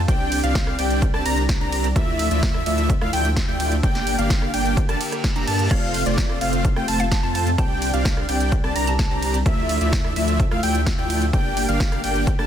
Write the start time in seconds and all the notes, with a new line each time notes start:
Already playing: C3
0.08 C2 G3 C4 D4 G4 D5 G5, kick, closed hi-hat
0.32 open hi-hat, ride
0.44 C2 C4 D4 G4 D5 F5, closed hi-hat
0.55 kick, snare, closed hi-hat
0.67 cross-stick
0.79 C2 C4 D4 G4 D5 G5, open hi-hat, ride
0.90 closed hi-hat
1.02 kick, closed hi-hat
1.14 C2 C4 D4 G4 D5 A5, cross-stick
1.26 C2 C4 D4 G4 D5 A#5, open hi-hat, ride
1.37 closed hi-hat
1.49 kick, snare, closed hi-hat
1.61 C2 C4 D4 G4 D5 A#5
1.72 open hi-hat, ride
1.84 closed hi-hat
1.96 D2 D3 F3 A3 E4 F4 D5 E5, kick, closed hi-hat
2.19 open hi-hat, ride
2.31 D2 A3 E4 F4 D5 E5, closed hi-hat
2.43 kick, snare, closed hi-hat
2.54 cross-stick
2.66 D2 A3 E4 F4 D5 E5, open hi-hat, ride
2.78 closed hi-hat
2.90 kick, closed hi-hat
3.01 D2 A3 E4 F4 D5 F5, cross-stick
3.13 D2 A3 E4 F4 D5 G5, open hi-hat, ride
3.25 closed hi-hat
3.36 kick, snare, closed hi-hat
3.48 D2 A3 E4 F4 D5 G5
3.60 open hi-hat, ride
3.72 closed hi-hat
3.83 G1 A#3 D4 G4 D5 G5, kick, closed hi-hat
3.95 snare, closed hi-hat
4.07 open hi-hat, ride
4.18 G1 A#3 D4 G4 D5 F5, closed hi-hat
4.30 kick, snare, closed hi-hat
4.42 cross-stick
4.54 G1 A#3 D4 G4 D5 G5, open hi-hat, ride
4.65 closed hi-hat
4.77 kick, closed hi-hat, reverse cymbal
4.89 G1 A#3 D4 G4 D5 A5, cross-stick, closed hi-hat
5.01 open hi-hat, ride
5.12 cross-stick, closed hi-hat
5.24 kick, snare, closed hi-hat
5.36 G1 A#3 D4 G4 D5 A#5, closed hi-hat
5.47 G2 A#3 D4 G4 D5 A5, open hi-hat, ride
5.59 closed hi-hat
5.71 F1 C3 A3 C4 F4 C5 D5 F5, kick, closed hi-hat, crash
5.94 open hi-hat, ride
6.06 F1 A3 C4 F4 C5 D5, closed hi-hat
6.18 kick, snare, closed hi-hat
6.29 cross-stick
6.41 F1 A3 C4 F4 C5 F5, open hi-hat, ride
6.53 closed hi-hat
6.65 kick, closed hi-hat
6.76 F1 A3 C4 F4 C5 G5, cross-stick
6.88 F1 A3 C4 F4 C5 A5, open hi-hat, ride
7.00 F5, closed hi-hat
7.11 A5, kick, snare, closed hi-hat
7.23 F2 A3 C4 F4 C5 A5
7.35 A5, open hi-hat, ride
7.47 closed hi-hat
7.58 C2 C3 G3 C4 D4 G4 D5 G5 A5, kick, closed hi-hat
7.82 open hi-hat, ride
7.94 C2 C4 D4 G4 D5 F5, closed hi-hat
8.05 kick, snare, closed hi-hat
8.17 cross-stick
8.29 C2 C4 D4 G4 D5 G5, open hi-hat, ride
8.40 closed hi-hat
8.52 kick, closed hi-hat
8.64 C2 C4 D4 G4 D5 A5, cross-stick
8.76 C2 C4 D4 G4 D5 A#5, open hi-hat, ride
8.87 A5, closed hi-hat
8.99 A5, kick, snare, closed hi-hat
9.11 C2 C4 D4 G4 D5 A#5
9.22 open hi-hat, ride
9.34 closed hi-hat
9.46 D2 D3 F3 A3 E4 F4 D5 E5, kick, closed hi-hat
9.69 open hi-hat, ride
9.81 D2 A3 E4 F4 D5 E5, closed hi-hat
9.93 kick, snare, closed hi-hat
10.04 cross-stick
10.16 D2 A3 E4 F4 D5 E5, open hi-hat, ride
10.28 closed hi-hat
10.40 kick, closed hi-hat
10.51 D2 A3 E4 F4 D5 F5, cross-stick
10.63 D2 A3 E4 F4 D5 G5, open hi-hat, ride
10.75 closed hi-hat
10.86 kick, snare, closed hi-hat
10.98 D2 A3 E4 F4 D5 G5
11.10 open hi-hat, ride
11.22 closed hi-hat
11.33 G1 A#3 D4 G4 D5 G5, kick, closed hi-hat
11.57 open hi-hat, ride
11.69 G1 A#3 D4 G4 D5 F5, closed hi-hat
11.80 kick, snare, closed hi-hat
11.92 cross-stick, closed hi-hat
12.04 G1 A#3 D4 G4 D5 G5, open hi-hat, ride
12.15 closed hi-hat
12.27 kick, closed hi-hat
12.39 G1 A#3 D4 G4 D5 A5, cross-stick